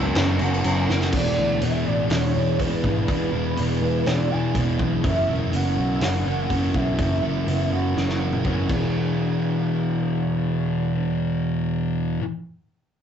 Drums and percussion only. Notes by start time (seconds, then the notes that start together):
0.05 tambourine
0.15 snare, crash
0.29 tambourine
0.39 tambourine, crash
0.54 tambourine
0.64 tambourine, crash
0.90 snare
1.01 snare, tambourine
1.12 kick, crash
1.61 open hi-hat
2.10 snare, open hi-hat
2.60 kick, open hi-hat
2.84 kick
3.08 kick, open hi-hat
3.57 open hi-hat
4.06 snare, open hi-hat
4.55 kick, open hi-hat
4.79 kick
5.04 kick, open hi-hat
5.53 open hi-hat
6.01 snare, open hi-hat
6.50 kick, open hi-hat
6.74 kick
6.98 kick, open hi-hat
7.48 open hi-hat
7.97 snare
8.09 snare
8.33 high tom
8.45 kick, mid tom
8.69 kick, crash